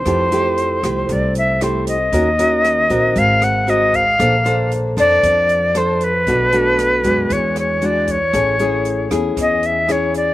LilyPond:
<<
  \new Staff \with { instrumentName = "Flute" } { \time 4/4 \key bes \lydian \tempo 4 = 116 c''2 d''8 e''8 c''8 ees''8~ | ees''2 f''8 ges''8 ees''8 f''8~ | f''4 r8 d''4. c''8 b'8~ | b'2 des''8 des''8 d''8 des''8~ |
des''4. r8 ees''8 e''8 cis''8 d''8 | }
  \new Staff \with { instrumentName = "Nylon-string guitar" } { \time 4/4 \key bes \lydian << { <a e' g'>8 <a e' g'>4 <a e' g'>4. <a e' g'>8 r8 | <des' ges' bes'>8 <des' ges' bes'>4 <c' ges' bes'>4. <c' ges' bes'>8 r8 | <d' a' c''>8 <d' a' c''>4 <d' a' c''>4. <d' a' c''>8 r8 | <a d' fis'>8 <a d' fis'>4 <aes d' fis'>4. <gis d' fis'>8 r8 |
<cis' e' gis'>8 <cis' e' gis'>4 <cis' e' gis'>4. <cis' e' gis'>4 | } \\ { f2 c2 | ees2 aes2 | bes2 f2 | b,2 e2 |
a2 e2 | } >> }
  \new Staff \with { instrumentName = "Upright bass" } { \clef bass \time 4/4 \key bes \lydian f,4. c,8 c,2 | ees,4. bes,,8 aes,,2 | bes,,4. f,8 f,2 | b,,4. fis,8 e,2 |
a,,4. e,8 e,2 | }
  \new DrumStaff \with { instrumentName = "Drums" } \drummode { \time 4/4 <hh bd ss>8 hh8 hh8 <hh ss>8 <hh bd>8 hh8 <hh ss>8 hh8 | <hh bd>8 hh8 <hh ss>8 <hh bd>8 <hh bd>8 <hh ss>8 hh8 <hh bd>8 | <hh bd ss>8 hh8 hh8 <hh ss>8 <hh bd>8 hh8 <hh ss>8 hh8 | <hh bd>8 hh8 <hh ss>8 <hh bd>8 <hh bd>8 <hh ss>8 hh8 <hh bd>8 |
<hh bd ss>8 hh8 hh8 <hh ss>8 <hh bd>8 hh8 <hh ss>8 hh8 | }
>>